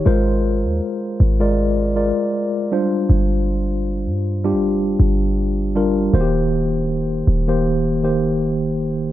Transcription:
X:1
M:4/4
L:1/16
Q:"Swing 16ths" 1/4=79
K:Eb
V:1 name="Tine electric piano"
[A,FBc]4- [A,FBc] z2 [A,FBd]2 z [A,FBd]4 [G,DFc]2- | [G,DFc]4 z3 [G,DFG]4- [G,DFG] z2 [G,DFB] z | [E,B,_G=Gc]4- [E,B,_G=Gc] z2 [E,B,Gc]2 z [E,B,Gc]4 z2 |]
V:2 name="808-style bass" clef=bass
A,,,3 E,, z2 A,,,4- A,,, z4 z | G,,,4- G,,, G,,2- G,,/2 G,,,2- G,,,/2 G,,,6 | E,,,6 E,,,8- E,,,2 |]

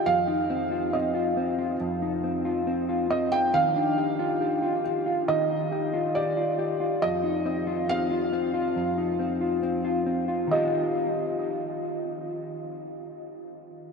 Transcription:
X:1
M:4/4
L:1/16
Q:1/4=69
K:Eb
V:1 name="Felt piano"
f4 e4 z6 e g | f6 z2 e4 d4 | e4 f8 z4 | e16 |]
V:2 name="Clean electric guitar"
F,, E C F C F C F F,, E C F C F C F | E, D G F G F G F E,2 G F G F G F | F,, E C F C F C F F,, E C F C F C F | [E,FG]16 |]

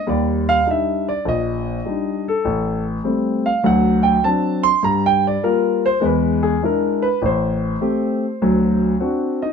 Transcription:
X:1
M:4/4
L:1/8
Q:"Swing" 1/4=101
K:Eblyd
V:1 name="Grand piano"
d f =e d _e3 A- | A z2 f ^f g a c' | (3b g d B c [B=B] ^G _B =B | c6 z [Ee] |]
V:2 name="Grand piano" clef=bass
[E,,G,]2 [G,DE] z B,,,2 [G,DE] z | A,,,2 [G,A,C] z [D,,^F,]2 [F,CD] z | [G,,G,]2 [G,B,F] z [=E,,^G,]2 [G,D=E] z | A,,,2 [A,CG] z [D,,^F,]2 [CD^F] z |]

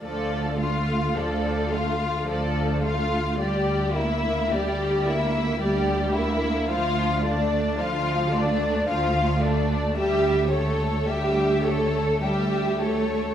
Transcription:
X:1
M:3/4
L:1/8
Q:1/4=54
K:Dm
V:1 name="Violin section"
d f d f d f | d e d e d e | f d f d f d | e ^c e c e c |]
V:2 name="Violin section"
A F A F A F | G E G E G E | F D F D F D | G A G A G A |]
V:3 name="Viola section" clef=bass
F, A, F, A, F, A, | G, B, G, B, G, B, | F, A, F, A, F, A, | G, A, G, A, G, A, |]
V:4 name="Cello section" clef=bass
D,,2 D,,2 D,,2 | D,,2 D,,2 D,,2 | D,,2 D,,2 D,,2 | D,,2 D,,2 D,,2 |]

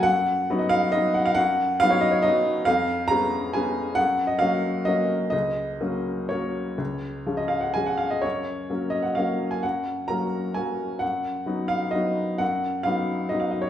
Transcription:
X:1
M:3/4
L:1/16
Q:1/4=132
K:F#
V:1 name="Upright piano"
f4- f d e2 d2 f e | f4 e c d c d4 | e4 a4 g4 | f3 d e4 d4 |
d8 c4- | c4- c d e f g f e d | c6 d f e3 g | f4 a4 g4 |
f6 e2 d4 | f4 e4 d e d c |]
V:2 name="Upright piano"
F,,4 [F,B,D]4 [F,B,D]4 | F,,4 [F,B,D]4 [F,B,D]4 | E,,4 [G,B,C]4 [G,B,C]4 | F,,4 [F,A,C]4 [F,A,C]4 |
C,,4 [F,A,C]4 [F,A,C]4 | C,,4 [E,G,C]4 [E,G,C]4 | F,,4 [F,A,C]4 [F,A,C]4 | F,,4 [F,A,C]4 [F,A,C]4 |
F,,4 [F,B,D]4 [F,B,D]4 | F,,4 [F,B,D]4 [F,B,D]4 |]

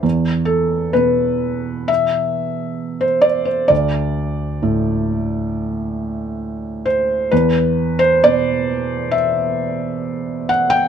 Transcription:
X:1
M:4/4
L:1/16
Q:1/4=66
K:Dmix
V:1 name="Felt piano"
z2 A2 B4 e4- e c d c | d12- d2 c2 | B3 c d4 e6 f g |]
V:2 name="Felt piano" clef=bass
E,,4 B,,12 | D,,4 A,,12 | E,,4 B,,12 |]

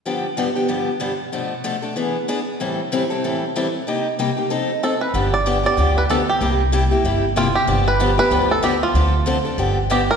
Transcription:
X:1
M:4/4
L:1/8
Q:"Swing" 1/4=189
K:Gmix
V:1 name="Five-string banjo"
z8 | z8 | z8 | z6 A B- |
B d2 d2 B A G- | G6 F G- | G B2 B2 A G F- | F6 G _B |]
V:2 name="Steel-string acoustic guitar"
[G,,D,F,B,DG] z [G,,D,F,B,DG] [F,B,DG] [G,,D,F,B,DG] z [G,,D,F,B,DG] z | [B,,F,A,DA] z [B,,F,A,DA] [A,DA] [E,B,D^G] z [E,B,DG] z | [A,,E,G,CEA] z [A,,E,G,CEA] [G,CEA] [A,,E,G,CEA] z [A,,E,G,CEA] z | [C,G,_B,_EG] z [C,G,B,EG] [B,EG] [F,CEA] z [F,CEA] z |
[D,F,B,DG] z [D,F,B,DG] [B,DG] [D,F,B,DG] z [D,F,B,DG] z | [C,G,_B,EG] z [C,G,B,EG] [B,EG] [C,G,B,EG] z [C,G,B,EG] z | [D,F,B,DG] z [D,F,B,DG] [B,DG] [D,F,B,DG] z [D,F,B,DG] z | [D,F,CDA] z [D,F,CDA] [CDA] [D,F,B,DG] z [D,F,B,DG] z |]
V:3 name="Upright bass" clef=bass
z8 | z8 | z8 | z8 |
G,,,4 D,,4 | C,,4 G,,,4 | G,,,4 D,,4 | D,,4 G,,,4 |]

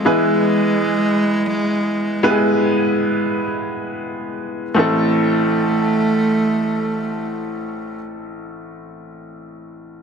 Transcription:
X:1
M:4/4
L:1/8
Q:1/4=46
K:Ephr
V:1 name="Upright piano"
[^G,B,E^GB]4 [G,B,E=G^GB]4 | [A,CEA]8 |]
V:2 name="Upright piano" clef=bass
E,3 z4 z | A,,,8 |]
V:3 name="Cello" clef=bass
^G,6 z2 | A,8 |]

